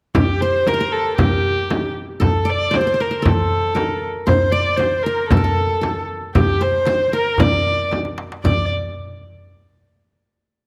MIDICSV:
0, 0, Header, 1, 5, 480
1, 0, Start_track
1, 0, Tempo, 515907
1, 141, Time_signature, 4, 2, 24, 8
1, 3982, Tempo, 521286
1, 9865, End_track
2, 0, Start_track
2, 0, Title_t, "Qanun"
2, 0, Program_c, 0, 107
2, 138, Note_on_c, 0, 67, 61
2, 391, Note_on_c, 0, 72, 76
2, 627, Note_on_c, 0, 70, 75
2, 683, Note_off_c, 0, 72, 0
2, 686, Note_on_c, 0, 72, 58
2, 745, Note_off_c, 0, 70, 0
2, 749, Note_on_c, 0, 70, 73
2, 1096, Note_off_c, 0, 67, 0
2, 1100, Note_on_c, 0, 67, 59
2, 1668, Note_off_c, 0, 72, 0
2, 1802, Note_off_c, 0, 70, 0
2, 2045, Note_on_c, 0, 69, 69
2, 2268, Note_off_c, 0, 67, 0
2, 2280, Note_on_c, 0, 74, 76
2, 2520, Note_on_c, 0, 72, 66
2, 2609, Note_off_c, 0, 72, 0
2, 2612, Note_on_c, 0, 72, 51
2, 2666, Note_off_c, 0, 72, 0
2, 2670, Note_on_c, 0, 72, 65
2, 2731, Note_off_c, 0, 72, 0
2, 2734, Note_on_c, 0, 72, 57
2, 2790, Note_off_c, 0, 72, 0
2, 2794, Note_on_c, 0, 72, 62
2, 2888, Note_off_c, 0, 72, 0
2, 2892, Note_on_c, 0, 72, 55
2, 2995, Note_off_c, 0, 69, 0
2, 2999, Note_on_c, 0, 69, 69
2, 3196, Note_off_c, 0, 74, 0
2, 3487, Note_on_c, 0, 70, 58
2, 3543, Note_off_c, 0, 69, 0
2, 3874, Note_off_c, 0, 72, 0
2, 3970, Note_on_c, 0, 72, 72
2, 4205, Note_on_c, 0, 74, 88
2, 4432, Note_off_c, 0, 72, 0
2, 4436, Note_on_c, 0, 72, 70
2, 4534, Note_off_c, 0, 70, 0
2, 4703, Note_on_c, 0, 70, 72
2, 4934, Note_on_c, 0, 69, 69
2, 4982, Note_off_c, 0, 70, 0
2, 4986, Note_on_c, 0, 70, 59
2, 5041, Note_off_c, 0, 69, 0
2, 5051, Note_on_c, 0, 69, 64
2, 5106, Note_off_c, 0, 70, 0
2, 5112, Note_off_c, 0, 74, 0
2, 5390, Note_off_c, 0, 69, 0
2, 5394, Note_on_c, 0, 69, 50
2, 5408, Note_off_c, 0, 72, 0
2, 5887, Note_on_c, 0, 67, 60
2, 6126, Note_on_c, 0, 72, 75
2, 6139, Note_off_c, 0, 67, 0
2, 6351, Note_off_c, 0, 72, 0
2, 6362, Note_on_c, 0, 72, 78
2, 6473, Note_off_c, 0, 69, 0
2, 6608, Note_on_c, 0, 70, 77
2, 6616, Note_off_c, 0, 72, 0
2, 6854, Note_on_c, 0, 74, 80
2, 6859, Note_off_c, 0, 70, 0
2, 7302, Note_off_c, 0, 74, 0
2, 7820, Note_on_c, 0, 74, 74
2, 8042, Note_off_c, 0, 74, 0
2, 9865, End_track
3, 0, Start_track
3, 0, Title_t, "Violin"
3, 0, Program_c, 1, 40
3, 154, Note_on_c, 1, 67, 76
3, 382, Note_on_c, 1, 72, 87
3, 396, Note_off_c, 1, 67, 0
3, 630, Note_on_c, 1, 70, 90
3, 644, Note_off_c, 1, 72, 0
3, 863, Note_on_c, 1, 69, 80
3, 877, Note_off_c, 1, 70, 0
3, 1087, Note_off_c, 1, 69, 0
3, 1093, Note_on_c, 1, 67, 69
3, 1777, Note_off_c, 1, 67, 0
3, 2068, Note_on_c, 1, 69, 74
3, 2324, Note_on_c, 1, 74, 83
3, 2338, Note_off_c, 1, 69, 0
3, 2565, Note_on_c, 1, 72, 89
3, 2579, Note_off_c, 1, 74, 0
3, 2798, Note_on_c, 1, 70, 78
3, 2812, Note_off_c, 1, 72, 0
3, 2968, Note_off_c, 1, 70, 0
3, 2968, Note_on_c, 1, 70, 52
3, 3064, Note_on_c, 1, 69, 72
3, 3078, Note_off_c, 1, 70, 0
3, 3763, Note_off_c, 1, 69, 0
3, 3983, Note_on_c, 1, 72, 92
3, 4202, Note_on_c, 1, 74, 88
3, 4216, Note_off_c, 1, 72, 0
3, 4429, Note_on_c, 1, 72, 80
3, 4443, Note_off_c, 1, 74, 0
3, 4672, Note_on_c, 1, 70, 79
3, 4686, Note_off_c, 1, 72, 0
3, 4907, Note_off_c, 1, 70, 0
3, 4912, Note_on_c, 1, 69, 80
3, 5606, Note_off_c, 1, 69, 0
3, 5891, Note_on_c, 1, 67, 76
3, 6143, Note_on_c, 1, 72, 84
3, 6157, Note_off_c, 1, 67, 0
3, 6619, Note_off_c, 1, 72, 0
3, 6623, Note_on_c, 1, 70, 83
3, 6853, Note_on_c, 1, 74, 91
3, 6867, Note_off_c, 1, 70, 0
3, 7335, Note_off_c, 1, 74, 0
3, 7817, Note_on_c, 1, 74, 74
3, 8041, Note_off_c, 1, 74, 0
3, 9865, End_track
4, 0, Start_track
4, 0, Title_t, "Darbuka"
4, 145, Note_on_c, 9, 64, 73
4, 238, Note_off_c, 9, 64, 0
4, 269, Note_on_c, 9, 62, 23
4, 362, Note_off_c, 9, 62, 0
4, 387, Note_on_c, 9, 62, 22
4, 480, Note_off_c, 9, 62, 0
4, 634, Note_on_c, 9, 63, 60
4, 727, Note_off_c, 9, 63, 0
4, 873, Note_on_c, 9, 62, 21
4, 966, Note_off_c, 9, 62, 0
4, 1103, Note_on_c, 9, 64, 78
4, 1196, Note_off_c, 9, 64, 0
4, 1235, Note_on_c, 9, 62, 23
4, 1328, Note_off_c, 9, 62, 0
4, 1356, Note_on_c, 9, 62, 23
4, 1449, Note_off_c, 9, 62, 0
4, 1586, Note_on_c, 9, 63, 67
4, 1679, Note_off_c, 9, 63, 0
4, 2059, Note_on_c, 9, 64, 78
4, 2152, Note_off_c, 9, 64, 0
4, 2191, Note_on_c, 9, 62, 26
4, 2284, Note_off_c, 9, 62, 0
4, 2310, Note_on_c, 9, 62, 26
4, 2403, Note_off_c, 9, 62, 0
4, 2427, Note_on_c, 9, 62, 24
4, 2520, Note_off_c, 9, 62, 0
4, 2553, Note_on_c, 9, 63, 50
4, 2646, Note_off_c, 9, 63, 0
4, 2793, Note_on_c, 9, 62, 20
4, 2886, Note_off_c, 9, 62, 0
4, 3029, Note_on_c, 9, 64, 89
4, 3123, Note_off_c, 9, 64, 0
4, 3155, Note_on_c, 9, 62, 24
4, 3248, Note_off_c, 9, 62, 0
4, 3277, Note_on_c, 9, 62, 27
4, 3370, Note_off_c, 9, 62, 0
4, 3507, Note_on_c, 9, 63, 61
4, 3600, Note_off_c, 9, 63, 0
4, 3988, Note_on_c, 9, 64, 91
4, 4080, Note_off_c, 9, 64, 0
4, 4116, Note_on_c, 9, 62, 27
4, 4208, Note_off_c, 9, 62, 0
4, 4227, Note_on_c, 9, 62, 25
4, 4319, Note_off_c, 9, 62, 0
4, 4464, Note_on_c, 9, 63, 59
4, 4556, Note_off_c, 9, 63, 0
4, 4704, Note_on_c, 9, 62, 23
4, 4796, Note_off_c, 9, 62, 0
4, 4940, Note_on_c, 9, 64, 97
4, 5032, Note_off_c, 9, 64, 0
4, 5064, Note_on_c, 9, 62, 25
4, 5156, Note_off_c, 9, 62, 0
4, 5180, Note_on_c, 9, 62, 26
4, 5272, Note_off_c, 9, 62, 0
4, 5412, Note_on_c, 9, 63, 66
4, 5504, Note_off_c, 9, 63, 0
4, 5891, Note_on_c, 9, 64, 82
4, 5983, Note_off_c, 9, 64, 0
4, 6010, Note_on_c, 9, 62, 22
4, 6103, Note_off_c, 9, 62, 0
4, 6130, Note_on_c, 9, 62, 22
4, 6222, Note_off_c, 9, 62, 0
4, 6242, Note_on_c, 9, 62, 27
4, 6334, Note_off_c, 9, 62, 0
4, 6353, Note_on_c, 9, 63, 59
4, 6445, Note_off_c, 9, 63, 0
4, 6483, Note_on_c, 9, 62, 24
4, 6575, Note_off_c, 9, 62, 0
4, 6594, Note_on_c, 9, 62, 21
4, 6686, Note_off_c, 9, 62, 0
4, 6835, Note_on_c, 9, 64, 80
4, 6927, Note_off_c, 9, 64, 0
4, 6969, Note_on_c, 9, 62, 25
4, 7061, Note_off_c, 9, 62, 0
4, 7089, Note_on_c, 9, 62, 27
4, 7181, Note_off_c, 9, 62, 0
4, 7329, Note_on_c, 9, 63, 51
4, 7421, Note_off_c, 9, 63, 0
4, 7453, Note_on_c, 9, 62, 57
4, 7545, Note_off_c, 9, 62, 0
4, 7572, Note_on_c, 9, 63, 67
4, 7664, Note_off_c, 9, 63, 0
4, 7702, Note_on_c, 9, 62, 73
4, 7794, Note_off_c, 9, 62, 0
4, 7814, Note_on_c, 9, 64, 76
4, 7906, Note_off_c, 9, 64, 0
4, 9865, End_track
5, 0, Start_track
5, 0, Title_t, "Frame drum"
5, 137, Note_on_c, 9, 64, 87
5, 230, Note_off_c, 9, 64, 0
5, 620, Note_on_c, 9, 64, 56
5, 713, Note_off_c, 9, 64, 0
5, 1104, Note_on_c, 9, 64, 86
5, 1197, Note_off_c, 9, 64, 0
5, 1591, Note_on_c, 9, 64, 68
5, 1684, Note_off_c, 9, 64, 0
5, 2064, Note_on_c, 9, 64, 64
5, 2158, Note_off_c, 9, 64, 0
5, 2546, Note_on_c, 9, 64, 64
5, 2639, Note_off_c, 9, 64, 0
5, 3028, Note_on_c, 9, 64, 82
5, 3121, Note_off_c, 9, 64, 0
5, 3499, Note_on_c, 9, 64, 56
5, 3592, Note_off_c, 9, 64, 0
5, 3978, Note_on_c, 9, 64, 71
5, 4070, Note_off_c, 9, 64, 0
5, 4454, Note_on_c, 9, 64, 53
5, 4546, Note_off_c, 9, 64, 0
5, 4927, Note_on_c, 9, 64, 91
5, 5019, Note_off_c, 9, 64, 0
5, 5411, Note_on_c, 9, 64, 62
5, 5503, Note_off_c, 9, 64, 0
5, 5891, Note_on_c, 9, 64, 87
5, 5983, Note_off_c, 9, 64, 0
5, 6371, Note_on_c, 9, 64, 57
5, 6463, Note_off_c, 9, 64, 0
5, 6852, Note_on_c, 9, 64, 90
5, 6944, Note_off_c, 9, 64, 0
5, 7339, Note_on_c, 9, 64, 56
5, 7431, Note_off_c, 9, 64, 0
5, 7819, Note_on_c, 9, 64, 68
5, 7911, Note_off_c, 9, 64, 0
5, 9865, End_track
0, 0, End_of_file